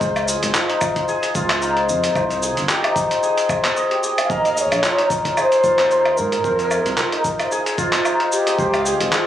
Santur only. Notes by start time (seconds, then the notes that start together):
Already playing: D#4 F4 G#4 A#4
0.01 C5
0.28 G#4
0.55 F4
0.69 D#4
0.96 C5
1.08 G#4
1.35 F4
1.62 D#4
1.77 C5
2.04 G#4
2.16 C5
2.43 G#4
2.69 G4
2.84 D#4
3.11 C5
3.23 G#4
3.50 C5
3.65 G#4
3.77 D#5
3.91 G4
4.04 G#4
4.18 G#4
4.30 A#4
4.45 F5
4.57 G#4
4.84 F4
4.99 D#4
5.25 A#4
5.37 G#4
5.64 F4
5.91 D#4
6.06 A#4
6.32 G#4
6.44 C5
6.59 G#5
6.71 G#4
6.98 F4
7.13 D#4
7.39 C5
7.52 G#4
7.78 F4
8.05 D#4
8.20 C5
8.47 G#4
8.59 C5
8.74 F5
8.86 G#4
9.12 F4